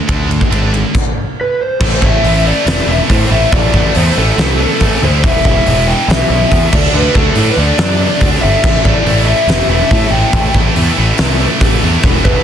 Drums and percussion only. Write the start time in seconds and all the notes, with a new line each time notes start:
0.09 kick, ride
0.31 ride
0.41 kick
0.52 ride
0.74 ride
0.95 kick, crash
1.80 kick, crash
2.02 kick
2.24 open hi-hat
2.67 snare, open hi-hat
3.10 kick, open hi-hat
3.52 kick, open hi-hat
3.74 kick
3.95 open hi-hat
4.38 snare, open hi-hat
4.80 kick, open hi-hat
5.24 kick, open hi-hat
5.45 kick
5.66 open hi-hat
6.10 snare, open hi-hat
6.51 kick, open hi-hat
6.73 kick, crash
7.15 kick
7.35 open hi-hat
7.78 snare, open hi-hat
8.21 kick, open hi-hat
8.64 kick, crash
8.85 kick
9.06 open hi-hat
9.49 snare, open hi-hat
9.91 kick, open hi-hat
10.33 kick, open hi-hat
10.54 kick
10.76 open hi-hat
11.18 snare, open hi-hat
11.61 kick, open hi-hat
12.03 kick, open hi-hat
12.25 kick